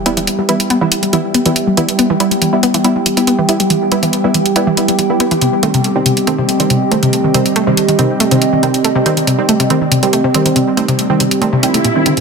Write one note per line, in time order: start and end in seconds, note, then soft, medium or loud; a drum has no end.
0.00 12.20 G3 medium
0.00 5.42 B3 medium
0.00 12.20 G4 medium
0.00 5.42 E5 medium
0.00 12.20 G5 medium
0.00 sub drop medium
0.06 0.46 G3 medium
0.06 0.11 B3 loud
0.06 0.46 B3 medium
0.06 0.46 E4 loud
0.06 closed hi-hat medium
0.17 0.20 E3 loud
0.17 closed hi-hat medium
0.27 closed hi-hat medium
0.38 0.46 G3 medium
0.49 0.56 E3 medium
0.49 0.59 G3 medium
0.49 0.59 B3 medium
0.49 0.59 E4 loud
0.49 closed hi-hat medium
0.60 closed hi-hat medium
0.70 0.75 B3 loud
0.70 closed hi-hat medium
0.81 0.84 E3 loud
0.81 0.96 G3 medium
0.81 0.96 B3 medium
0.81 0.96 E4 medium
0.92 closed hi-hat loud
1.03 1.10 G3 medium
1.03 closed hi-hat medium
1.13 1.21 E3 medium
1.13 1.28 G3 medium
1.13 1.28 B3 medium
1.13 1.28 E4 loud
1.13 closed hi-hat medium
1.34 1.40 B3 loud
1.34 closed hi-hat medium
1.46 1.49 E3 loud
1.46 1.60 G3 medium
1.46 1.60 B3 medium
1.46 1.60 E4 medium
1.46 closed hi-hat medium
1.56 closed hi-hat medium
1.67 1.74 G3 medium
1.77 1.85 E3 medium
1.77 2.18 G3 medium
1.77 2.18 B3 medium
1.77 2.18 E4 loud
1.77 closed hi-hat medium
1.89 closed hi-hat medium
1.99 2.04 B3 loud
1.99 closed hi-hat medium
2.10 2.13 E3 loud
2.20 2.30 G3 loud
2.20 2.30 B3 medium
2.20 2.30 E4 loud
2.20 closed hi-hat medium
2.31 2.38 G3 medium
2.31 closed hi-hat medium
2.42 2.49 E3 medium
2.42 closed hi-hat medium
2.53 2.68 G3 medium
2.53 2.68 B3 medium
2.53 2.68 E4 medium
2.63 2.68 B3 loud
2.63 closed hi-hat medium
2.74 2.77 E3 loud
2.74 closed hi-hat medium
2.84 3.00 G3 medium
2.84 3.00 B3 medium
2.84 3.00 E4 loud
2.84 closed hi-hat medium
2.96 3.03 G3 medium
3.06 3.14 E3 medium
3.06 closed hi-hat medium
3.17 3.32 G3 medium
3.17 3.32 B3 medium
3.17 3.32 E4 medium
3.17 closed hi-hat medium
3.27 3.33 B3 loud
3.27 closed hi-hat medium
3.39 3.41 E3 loud
3.49 3.89 G3 medium
3.49 3.89 B3 medium
3.49 3.89 E4 medium
3.49 closed hi-hat medium
3.60 3.67 G3 medium
3.60 closed hi-hat medium
3.70 3.78 E3 medium
3.70 closed hi-hat medium
3.92 4.01 G3 loud
3.92 4.01 B3 medium
3.92 3.97 B3 loud
3.92 4.01 E4 loud
3.92 closed hi-hat medium
4.03 4.06 E3 loud
4.03 closed hi-hat medium
4.13 closed hi-hat medium
4.24 4.39 G3 medium
4.24 4.31 G3 medium
4.24 4.39 B3 medium
4.24 4.39 E4 medium
4.34 4.42 E3 medium
4.34 closed hi-hat medium
4.46 closed hi-hat medium
4.56 4.71 G3 medium
4.56 4.71 B3 medium
4.56 4.61 B3 loud
4.56 4.71 E4 loud
4.56 closed hi-hat medium
4.67 4.70 E3 loud
4.77 4.93 G3 medium
4.77 4.93 B3 medium
4.77 4.93 E4 medium
4.77 closed hi-hat medium
4.88 4.96 G3 medium
4.88 closed hi-hat medium
4.99 5.06 E3 medium
4.99 closed hi-hat medium
5.10 5.19 G3 medium
5.10 5.19 B3 medium
5.10 5.19 E4 medium
5.20 5.30 G3 medium
5.20 5.30 B3 medium
5.20 5.25 B3 loud
5.20 5.30 E4 medium
5.20 closed hi-hat medium
5.31 5.34 E3 loud
5.31 closed hi-hat medium
5.41 5.49 C3 medium
5.41 12.20 C4 medium
5.41 closed hi-hat medium
5.63 5.73 D#3 loud
5.63 5.73 G3 medium
5.63 5.68 A3 loud
5.63 5.73 C4 loud
5.63 closed hi-hat medium
5.74 5.77 C3 loud
5.74 closed hi-hat medium
5.84 closed hi-hat medium
5.95 6.10 D#3 medium
5.95 6.03 D#3 medium
5.95 6.10 G3 medium
5.95 6.10 C4 medium
6.02 6.14 C3 medium
6.02 12.20 D#5 medium
6.02 closed hi-hat medium
6.17 closed hi-hat medium
6.27 6.43 D#3 medium
6.27 6.43 G3 medium
6.27 6.32 A3 loud
6.27 6.43 C4 loud
6.27 closed hi-hat medium
6.38 6.41 C3 loud
6.49 closed hi-hat medium
6.60 6.75 D#3 medium
6.60 6.67 D#3 medium
6.60 6.75 G3 medium
6.60 6.75 C4 medium
6.60 closed hi-hat medium
6.70 6.78 C3 medium
6.70 closed hi-hat medium
6.92 7.32 D#3 medium
6.92 7.32 G3 medium
6.92 6.97 A3 loud
6.92 7.32 C4 loud
6.92 closed hi-hat medium
7.03 7.06 C3 loud
7.03 closed hi-hat medium
7.13 closed hi-hat medium
7.24 7.31 D#3 medium
7.34 7.42 C3 medium
7.34 7.44 D#3 loud
7.34 7.44 G3 medium
7.34 7.44 C4 loud
7.34 closed hi-hat medium
7.46 closed hi-hat medium
7.56 7.61 A3 loud
7.56 closed hi-hat medium
7.67 7.70 C3 medium
7.67 7.82 D#3 medium
7.67 7.82 G3 medium
7.67 7.82 C4 medium
7.77 closed hi-hat medium
7.88 7.96 D#3 medium
7.88 closed hi-hat medium
7.99 8.06 C3 medium
7.99 8.14 D#3 medium
7.99 8.14 G3 medium
7.99 8.14 C4 loud
7.99 closed hi-hat medium
8.20 8.25 A3 loud
8.20 closed hi-hat medium
8.31 8.34 C3 loud
8.31 8.46 D#3 medium
8.31 8.46 G3 medium
8.31 8.46 C4 medium
8.31 closed hi-hat medium
8.42 closed hi-hat medium
8.53 8.60 D#3 medium
8.63 8.71 C3 medium
8.63 9.03 D#3 medium
8.63 9.03 G3 medium
8.63 9.03 C4 medium
8.63 closed hi-hat medium
8.74 closed hi-hat medium
8.84 8.90 A3 loud
8.84 closed hi-hat medium
8.96 8.98 C3 loud
9.06 9.16 D#3 loud
9.06 9.16 G3 medium
9.06 9.16 C4 loud
9.06 closed hi-hat medium
9.17 9.24 D#3 medium
9.17 closed hi-hat medium
9.27 9.35 C3 medium
9.27 closed hi-hat medium
9.38 9.53 D#3 medium
9.38 9.53 G3 medium
9.38 9.53 C4 medium
9.49 9.54 A3 medium
9.49 closed hi-hat medium
9.60 9.63 C3 loud
9.60 closed hi-hat medium
9.70 9.86 D#3 loud
9.70 9.86 G3 medium
9.70 9.86 C4 loud
9.70 closed hi-hat medium
9.81 9.88 D#3 medium
9.92 9.99 C3 medium
9.92 closed hi-hat medium
10.03 10.18 D#3 medium
10.03 10.18 G3 medium
10.03 10.18 C4 medium
10.03 closed hi-hat medium
10.13 10.18 A3 medium
10.13 closed hi-hat medium
10.24 10.27 C3 loud
10.34 10.75 D#3 medium
10.34 10.75 G3 medium
10.34 10.75 C4 loud
10.34 closed hi-hat medium
10.46 10.53 D#3 medium
10.46 closed hi-hat medium
10.56 10.64 C3 medium
10.56 closed hi-hat medium
10.77 10.87 D#3 medium
10.77 10.87 G3 medium
10.77 10.82 A3 loud
10.77 10.87 C4 loud
10.77 closed hi-hat medium
10.88 10.91 C3 loud
10.88 closed hi-hat medium
10.99 closed hi-hat medium
11.10 11.25 D#3 medium
11.10 11.17 D#3 medium
11.10 11.25 G3 medium
11.10 11.25 C4 medium
11.20 11.28 C3 medium
11.20 closed hi-hat medium
11.31 closed hi-hat medium
11.42 11.57 D#3 medium
11.42 11.57 G3 medium
11.42 11.47 A3 loud
11.42 11.57 C4 loud
11.42 closed hi-hat medium
11.42 swell medium
11.53 11.56 C3 loud
11.63 11.78 D#3 medium
11.63 11.78 G3 medium
11.63 11.78 C4 medium
11.63 11.66 C4 loud
11.63 closed hi-hat medium
11.74 11.81 A3 medium
11.74 closed hi-hat medium
11.84 11.88 A#2 medium
11.84 closed hi-hat medium
11.96 12.04 D#3 medium
11.96 12.04 G3 medium
11.96 12.04 C4 medium
12.06 12.11 D3 medium
12.06 12.16 D#3 medium
12.06 12.16 G3 medium
12.06 12.16 C4 medium
12.06 closed hi-hat medium
12.17 12.20 A#2 medium
12.17 closed hi-hat medium